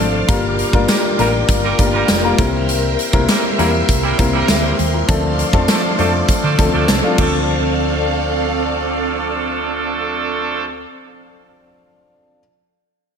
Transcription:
Already playing: F3 A3 C4 D4 A4 C5 F5 A5 D6
0.00 G#1
0.28 G1 G3 A#3 D4 F4 A#4 G5, kick, closed hi-hat
0.59 closed hi-hat
0.73 G1 G3 A#3 D4 F4 A#4, kick
0.88 G3 A#3 F4 A#4, snare, closed hi-hat, tambourine
1.18 A1 G3 A#3 D4 F4 A#4, closed hi-hat
1.49 G1, kick, closed hi-hat
1.64 G3 A#3 F4 A#4
1.78 G1 G3 A#3 D4 F4 A#4, kick, closed hi-hat
1.94 G3 A#3 F4 A#4
2.08 F1, snare, closed hi-hat, tambourine
2.23 G3 A#3 D4 F4 A#4
2.38 C2 G3 A#3 C4 E4 A#4 E5 G5 C6, kick, closed hi-hat
2.69 closed hi-hat
2.99 closed hi-hat
3.13 C2 G3 A#3 C4 E4 A#4, kick
3.28 G3 A#3 E4 A#4, snare, closed hi-hat, tambourine
3.58 E2 G3 A#3 C4 E4 A#4, closed hi-hat
3.89 C2, kick, closed hi-hat
4.03 G3 A#3 E4 A#4
4.18 C2 G3 A#3 C4 E4 A#4, kick, closed hi-hat
4.34 G3 A#3 E4 A#4
4.48 D2 A#4 E5, snare, closed hi-hat, tambourine
4.63 G4 C5
4.79 D#2, closed hi-hat
4.94 E4 A#4
5.08 D2 F3 A3 C4 D4 A4 D5 F5, kick, closed hi-hat
5.39 closed hi-hat
5.53 F2 F3 A3 C4 D4 A4, kick
5.68 F3 A3 D4 A4, snare, closed hi-hat, tambourine
5.98 F2 F3 A3 C4 D4 A4, closed hi-hat
6.28 kick, closed hi-hat
6.43 D3 F3 A3 D4 A4
6.58 D2 F3 A3 C4 D4 A4, kick, closed hi-hat
6.73 D2 F3 A3 D4 A4
6.88 C2, snare, closed hi-hat, tambourine
7.03 F3 A3 C4 D4 F4
7.16 D2 F3 A3 C4 D4 A4 D5 F5, kick, crash
7.21 A4

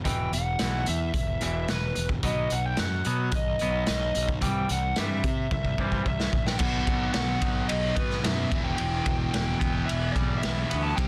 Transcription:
0.04 E1 E2 B2 E3 G5, kick, closed hi-hat
0.32 E1 E2 B2 F#5, closed hi-hat
0.59 B1 E2 B2 E3, snare, closed hi-hat
0.86 E2 B2 E5, closed hi-hat
1.13 E1 E2 B2, kick, closed hi-hat
1.41 E1 E2 B2 E3 E5, closed hi-hat
1.68 E1 E2 B2 B4, snare, closed hi-hat
1.95 E1 E2 B2, closed hi-hat
2.09 kick
2.23 B1 B2 F#3 B3 D#5, kick, closed hi-hat
2.50 B1 B2 F#5, closed hi-hat
2.66 G5
2.77 F#2 B2 F#3 F#5, snare, closed hi-hat
3.05 B2 F#3 B3, closed hi-hat
3.32 B1 D#5, kick, closed hi-hat
3.59 B1 B2 F#3 B3, closed hi-hat
3.87 B1 B2 F#3 D#5, snare, closed hi-hat
4.14 B1 B2 F#3, closed hi-hat
4.29 kick
4.41 C2 C3 E3 G3 G5, kick, closed hi-hat
4.68 C2 C3 E3 F#5, closed hi-hat
4.96 G2 C3 E3 G3 E5, snare, closed hi-hat
5.24 C3 E3, kick, closed hi-hat
5.51 C2 C3 E3 E5, kick
5.65 kick
5.78 C2 C3 E3 G3 C5, kick
5.92 kick
6.06 C2 C3 E3 E5, kick
6.20 snare
6.33 A#1 C3 E3, kick
6.47 G5, snare
6.58 B1 B2 F#3 F#5, kick, crash
6.62 B3
6.87 B1 F#3, kick, ride
7.13 B1 F#3 F#5, snare, ride
7.41 B1 D#4, kick, ride
7.68 B1 F#3 D#5, ride
7.95 B2 B3 B4, kick, ride
8.10 snare
8.23 F#2 F#3 E5, snare, ride
8.51 E1 E2 B2 E3, kick, ride
8.64 G5
8.76 E2 G5, ride
8.82 E1
9.05 E1 B2, kick, ride
9.31 E1 E3 G5, snare, ride
9.59 E1 B3, kick, ride
9.86 E3 E5, ride
9.91 E1
10.12 B1 G3 D5, kick, ride
10.38 E5
10.42 B1 E3, snare, ride
10.70 D2 B3, ride
10.83 A5
10.96 C2 C3 G3 C4 G5, kick, ride

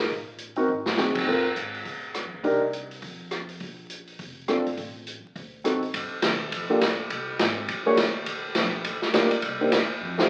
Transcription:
Already playing: G#4 A#4
0.09 A1, kick, open hi-hat
0.38 closed hi-hat
0.56 C4 D#4 F#4 A#4, open hi-hat
0.68 G#1
0.86 snare
0.97 F#1 C4 D#4 F#4 G#4, snare
1.15 kick, crash
1.26 G1 C4 F4 A4 A#4, kick
1.56 G#1, closed hi-hat
1.74 open hi-hat
1.85 D2, kick, open hi-hat
2.14 cross-stick, closed hi-hat
2.25 F2
2.34 D2
2.43 C2 D4 D#4 G4 A#4, kick, open hi-hat
2.73 closed hi-hat
2.91 open hi-hat
3.02 F2, kick, open hi-hat
3.31 cross-stick, closed hi-hat
3.49 open hi-hat
3.60 A#1, kick, open hi-hat
3.90 closed hi-hat
4.07 open hi-hat
4.19 F1, kick, open hi-hat
4.48 C4 D4 F4 A4, cross-stick, closed hi-hat
4.66 G#1, open hi-hat
4.77 A1, kick, open hi-hat
5.07 closed hi-hat
5.24 muted upright bass stroke
5.36 D2, kick, open hi-hat
5.64 A1 C4 D#4 F#4 A4, cross-stick, closed hi-hat
5.83 open hi-hat
5.94 G2, kick, ride
6.12 muted upright bass stroke
6.22 D#2, kick, snare, hi-hat pedal, ride
6.52 F2, kick, ride
6.70 A#3 D4 F4 G4 A4
6.81 D2, kick, snare, hi-hat pedal, ride
7.10 C2, kick, ride
7.39 G#1, kick, snare, hi-hat pedal, ride
7.68 A#1, kick, ride
7.86 A#3 D4 F#4 G#4 C#5
7.97 D2, kick, snare, hi-hat pedal, ride
8.26 D#2, kick, ride
8.55 A#1, kick, snare, hi-hat pedal, ride
8.84 D#2, kick, ride
9.02 muted upright bass stroke, snare
9.13 D2 A#3 D#4 F4 G4 D5, kick, snare, hi-hat pedal, ride
9.31 ride
9.42 C2, kick, ride
9.60 A#3 D4 D#4 G4 C5
9.72 D#2, kick, snare, hi-hat pedal, ride
10.01 F2
10.18 A3 D#4 F4 G4 C5, snare

